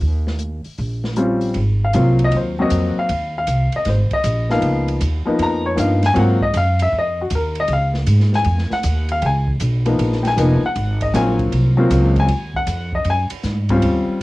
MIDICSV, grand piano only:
0, 0, Header, 1, 2, 480
1, 0, Start_track
1, 0, Tempo, 383387
1, 28, Time_signature, 4, 2, 24, 8
1, 17811, End_track
2, 0, Start_track
2, 0, Title_t, "Grand piano"
2, 0, Program_c, 0, 0
2, 1460, Note_on_c, 0, 55, 65
2, 1467, Note_on_c, 0, 60, 56
2, 1470, Note_on_c, 0, 61, 56
2, 1474, Note_on_c, 0, 65, 64
2, 1947, Note_off_c, 0, 55, 0
2, 1951, Note_off_c, 0, 60, 0
2, 1953, Note_off_c, 0, 61, 0
2, 1955, Note_off_c, 0, 65, 0
2, 2309, Note_on_c, 0, 77, 75
2, 2430, Note_on_c, 0, 54, 62
2, 2434, Note_on_c, 0, 60, 55
2, 2438, Note_on_c, 0, 58, 50
2, 2445, Note_on_c, 0, 65, 69
2, 2739, Note_off_c, 0, 77, 0
2, 2807, Note_on_c, 0, 75, 87
2, 2939, Note_off_c, 0, 75, 0
2, 2960, Note_on_c, 0, 72, 55
2, 3168, Note_off_c, 0, 54, 0
2, 3170, Note_off_c, 0, 60, 0
2, 3172, Note_off_c, 0, 58, 0
2, 3175, Note_off_c, 0, 65, 0
2, 3241, Note_on_c, 0, 58, 57
2, 3243, Note_on_c, 0, 54, 68
2, 3247, Note_off_c, 0, 72, 0
2, 3251, Note_on_c, 0, 60, 61
2, 3257, Note_on_c, 0, 66, 69
2, 3274, Note_on_c, 0, 75, 81
2, 3702, Note_off_c, 0, 75, 0
2, 3743, Note_on_c, 0, 77, 77
2, 3847, Note_off_c, 0, 58, 0
2, 3848, Note_off_c, 0, 54, 0
2, 3853, Note_off_c, 0, 60, 0
2, 3855, Note_off_c, 0, 66, 0
2, 4176, Note_off_c, 0, 77, 0
2, 4233, Note_on_c, 0, 77, 78
2, 4661, Note_off_c, 0, 77, 0
2, 4709, Note_on_c, 0, 75, 80
2, 4849, Note_off_c, 0, 75, 0
2, 4871, Note_on_c, 0, 72, 51
2, 5162, Note_off_c, 0, 72, 0
2, 5175, Note_on_c, 0, 75, 89
2, 5611, Note_off_c, 0, 75, 0
2, 5637, Note_on_c, 0, 58, 56
2, 5640, Note_on_c, 0, 53, 70
2, 5647, Note_on_c, 0, 59, 61
2, 5653, Note_on_c, 0, 77, 88
2, 5654, Note_on_c, 0, 63, 68
2, 6089, Note_off_c, 0, 77, 0
2, 6243, Note_off_c, 0, 58, 0
2, 6245, Note_off_c, 0, 53, 0
2, 6248, Note_off_c, 0, 59, 0
2, 6252, Note_off_c, 0, 63, 0
2, 6577, Note_on_c, 0, 53, 66
2, 6587, Note_on_c, 0, 58, 62
2, 6591, Note_on_c, 0, 59, 63
2, 6594, Note_on_c, 0, 63, 74
2, 6791, Note_on_c, 0, 82, 90
2, 7080, Note_off_c, 0, 82, 0
2, 7085, Note_on_c, 0, 73, 72
2, 7185, Note_off_c, 0, 53, 0
2, 7197, Note_off_c, 0, 58, 0
2, 7198, Note_off_c, 0, 59, 0
2, 7201, Note_off_c, 0, 63, 0
2, 7203, Note_on_c, 0, 53, 54
2, 7217, Note_on_c, 0, 58, 50
2, 7217, Note_on_c, 0, 59, 50
2, 7223, Note_on_c, 0, 63, 60
2, 7235, Note_off_c, 0, 73, 0
2, 7256, Note_on_c, 0, 77, 74
2, 7503, Note_off_c, 0, 53, 0
2, 7510, Note_off_c, 0, 58, 0
2, 7510, Note_off_c, 0, 59, 0
2, 7513, Note_off_c, 0, 63, 0
2, 7552, Note_off_c, 0, 77, 0
2, 7585, Note_on_c, 0, 80, 103
2, 7683, Note_on_c, 0, 54, 74
2, 7687, Note_on_c, 0, 58, 68
2, 7698, Note_on_c, 0, 60, 65
2, 7700, Note_on_c, 0, 65, 76
2, 7724, Note_off_c, 0, 80, 0
2, 7746, Note_on_c, 0, 78, 72
2, 7982, Note_off_c, 0, 54, 0
2, 7984, Note_off_c, 0, 58, 0
2, 7989, Note_off_c, 0, 60, 0
2, 7990, Note_off_c, 0, 65, 0
2, 8036, Note_off_c, 0, 78, 0
2, 8044, Note_on_c, 0, 75, 85
2, 8193, Note_off_c, 0, 75, 0
2, 8230, Note_on_c, 0, 77, 92
2, 8518, Note_off_c, 0, 77, 0
2, 8543, Note_on_c, 0, 76, 91
2, 8682, Note_off_c, 0, 76, 0
2, 8745, Note_on_c, 0, 75, 79
2, 9015, Note_off_c, 0, 75, 0
2, 9031, Note_on_c, 0, 66, 55
2, 9166, Note_off_c, 0, 66, 0
2, 9205, Note_on_c, 0, 70, 65
2, 9484, Note_off_c, 0, 70, 0
2, 9514, Note_on_c, 0, 75, 90
2, 9647, Note_off_c, 0, 75, 0
2, 9678, Note_on_c, 0, 77, 80
2, 9852, Note_off_c, 0, 77, 0
2, 10461, Note_on_c, 0, 80, 95
2, 10888, Note_off_c, 0, 80, 0
2, 10930, Note_on_c, 0, 78, 84
2, 11362, Note_off_c, 0, 78, 0
2, 11414, Note_on_c, 0, 77, 85
2, 11543, Note_on_c, 0, 79, 46
2, 11555, Note_off_c, 0, 77, 0
2, 11573, Note_off_c, 0, 79, 0
2, 11594, Note_on_c, 0, 80, 77
2, 11877, Note_off_c, 0, 80, 0
2, 12340, Note_on_c, 0, 53, 66
2, 12347, Note_on_c, 0, 58, 57
2, 12348, Note_on_c, 0, 59, 54
2, 12357, Note_on_c, 0, 63, 67
2, 12808, Note_on_c, 0, 79, 61
2, 12826, Note_off_c, 0, 79, 0
2, 12866, Note_on_c, 0, 80, 88
2, 12949, Note_off_c, 0, 53, 0
2, 12953, Note_off_c, 0, 58, 0
2, 12953, Note_off_c, 0, 59, 0
2, 12958, Note_off_c, 0, 63, 0
2, 12979, Note_on_c, 0, 53, 65
2, 12983, Note_on_c, 0, 58, 61
2, 12998, Note_on_c, 0, 59, 65
2, 12999, Note_on_c, 0, 63, 70
2, 13266, Note_off_c, 0, 53, 0
2, 13268, Note_off_c, 0, 58, 0
2, 13276, Note_off_c, 0, 59, 0
2, 13276, Note_off_c, 0, 63, 0
2, 13290, Note_off_c, 0, 80, 0
2, 13345, Note_on_c, 0, 78, 81
2, 13770, Note_off_c, 0, 78, 0
2, 13802, Note_on_c, 0, 75, 71
2, 13942, Note_on_c, 0, 58, 60
2, 13946, Note_on_c, 0, 54, 68
2, 13948, Note_off_c, 0, 75, 0
2, 13959, Note_on_c, 0, 60, 55
2, 13960, Note_on_c, 0, 65, 72
2, 13970, Note_on_c, 0, 80, 83
2, 14265, Note_off_c, 0, 80, 0
2, 14677, Note_off_c, 0, 58, 0
2, 14679, Note_off_c, 0, 54, 0
2, 14686, Note_off_c, 0, 60, 0
2, 14686, Note_off_c, 0, 65, 0
2, 14738, Note_on_c, 0, 54, 73
2, 14748, Note_on_c, 0, 58, 69
2, 14753, Note_on_c, 0, 60, 73
2, 14754, Note_on_c, 0, 65, 79
2, 15272, Note_on_c, 0, 80, 82
2, 15351, Note_off_c, 0, 54, 0
2, 15355, Note_off_c, 0, 58, 0
2, 15358, Note_off_c, 0, 60, 0
2, 15358, Note_off_c, 0, 65, 0
2, 15696, Note_off_c, 0, 80, 0
2, 15730, Note_on_c, 0, 78, 88
2, 16165, Note_off_c, 0, 78, 0
2, 16212, Note_on_c, 0, 75, 74
2, 16356, Note_off_c, 0, 75, 0
2, 16401, Note_on_c, 0, 80, 88
2, 16576, Note_off_c, 0, 80, 0
2, 17158, Note_on_c, 0, 55, 73
2, 17161, Note_on_c, 0, 61, 62
2, 17166, Note_on_c, 0, 60, 66
2, 17174, Note_on_c, 0, 65, 77
2, 17765, Note_off_c, 0, 55, 0
2, 17766, Note_off_c, 0, 61, 0
2, 17769, Note_off_c, 0, 60, 0
2, 17773, Note_off_c, 0, 65, 0
2, 17811, End_track
0, 0, End_of_file